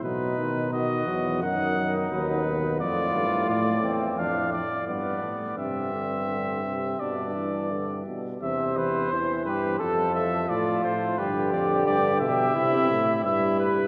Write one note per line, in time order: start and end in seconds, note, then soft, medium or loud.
0.02 1.05 B2 medium
0.02 0.38 F#3 medium
0.02 0.72 D#4 medium
0.02 0.72 B4 medium
0.38 0.72 D#3 medium
0.73 1.09 D#3 medium
0.73 1.45 F#4 medium
0.73 1.41 D#5 medium
1.07 1.44 E2 medium
1.07 1.44 F#3 medium
1.42 2.11 F#2 medium
1.42 1.77 D#3 medium
1.42 2.63 D#4 medium
1.42 1.94 F#5 medium
1.78 2.11 D#3 medium
2.11 2.82 D#2 medium
2.11 2.46 F#3 medium
2.11 2.79 B4 medium
2.46 2.80 B2 medium
2.80 3.14 F2 medium
2.80 5.25 A2 loud
2.80 3.81 F4 loud
2.80 3.48 D5 medium
3.14 3.48 G2 medium
3.49 3.83 A2 medium
3.49 3.93 D5 medium
3.83 4.20 E2 medium
3.83 4.21 C4 medium
4.18 4.63 F2 medium
4.18 4.63 D4 loud
4.18 4.50 F5 medium
4.52 4.87 D5 medium
4.87 5.20 G2 medium
4.87 5.54 B3 medium
4.87 5.57 D5 medium
5.23 5.59 A2 medium
5.57 6.99 G2 medium
5.57 5.91 C3 medium
5.57 7.02 C4 medium
5.57 7.01 E5 medium
5.93 6.28 D3 medium
6.29 6.63 D3 medium
6.64 6.99 C3 medium
7.00 8.04 G2 medium
7.00 7.37 B2 medium
7.00 8.06 D4 medium
7.00 8.06 D5 medium
7.35 7.72 E3 medium
7.71 8.05 D3 medium
8.06 8.40 B2 medium
8.41 8.74 E2 medium
8.41 9.08 C3 medium
8.41 9.42 C5 loud
8.41 8.78 E5 medium
8.76 9.11 E2 medium
8.76 9.13 B4 medium
9.11 9.47 E2 medium
9.11 9.79 E3 medium
9.11 9.45 C5 medium
9.46 9.81 G2 medium
9.46 9.81 G4 loud
9.46 9.78 B4 medium
9.79 10.49 F2 medium
9.79 11.17 F3 medium
9.79 10.14 A4 medium
9.79 10.48 A4 loud
10.15 10.50 E5 medium
10.48 10.84 A2 medium
10.48 11.20 F4 loud
10.48 10.83 D5 medium
10.84 11.20 A2 medium
10.84 11.19 C5 medium
11.18 11.54 G2 medium
11.18 12.53 D3 medium
11.18 12.20 G4 loud
11.18 11.52 B4 medium
11.53 11.87 F2 medium
11.53 11.86 D5 medium
11.86 12.21 G2 medium
11.86 12.20 D5 medium
12.20 12.55 B2 medium
12.20 12.54 G4 loud
12.20 13.22 E5 medium
12.55 12.89 C3 medium
12.55 13.08 C3 loud
12.55 13.23 E4 loud
12.90 13.26 A2 medium
13.25 13.88 G2 medium
13.25 13.88 G3 medium
13.25 13.88 E4 loud
13.25 13.58 E5 medium
13.60 13.88 B4 medium